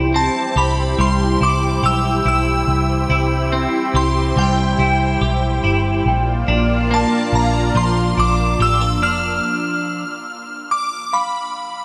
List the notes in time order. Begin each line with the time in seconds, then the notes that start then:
Already playing: C2 E4 G4 C5 G5
0.14 C4 A5
0.56 C2 G4 B5
0.99 C2 G3 C6
1.41 C2 E4 D6
1.83 B1 G4 E6
2.25 B1 E4 E6
2.67 C2 C5
3.10 C2 E4
3.52 C4
3.94 C2 G4 C6
4.36 C2 G3 G5
4.79 C2 E4
5.21 B1 G4
5.64 G1 E4
6.06 A#1 A#3 F4 D5 F5 G5
6.48 A#1 D4
6.91 A#3 A5
7.33 A#1 A#5
7.75 A#1 F3 C6
8.18 A#1 D4 D6
8.59 A1 G4 E6
8.82 A4
9.02 F1 D4 F6
10.71 D6
11.13 F5 B5